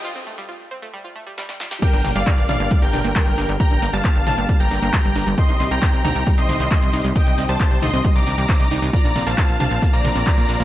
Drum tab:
CC |----------------|x---------------|----------------|----------------|
RD |----------------|----------------|----------------|----------------|
HH |----------------|xxoxxxoxxxoxxxox|xxoxxxoxxxoxxxox|xxoxxxoxxxoxxxox|
CP |----------------|----x-------x---|----x-------x---|----x-------x---|
SD |------------oooo|----------------|----------------|----------------|
T2 |----------------|--o---o---o-----|------o---------|--o---o---o-----|
BD |----------------|o---o---o---o---|o---o---o---o---|o---o---o---o---|

CC |----------------|----------------|
RD |----------------|x-x-x-x-x-x-x-x-|
HH |xxoxxxoxxxoxxxox|xxoxxxoxxxoxxxox|
CP |----x-------x---|----x-------x---|
SD |----------------|----------------|
T2 |------o---------|--o---o---o-----|
BD |o---o---o---o---|o---o---o---o---|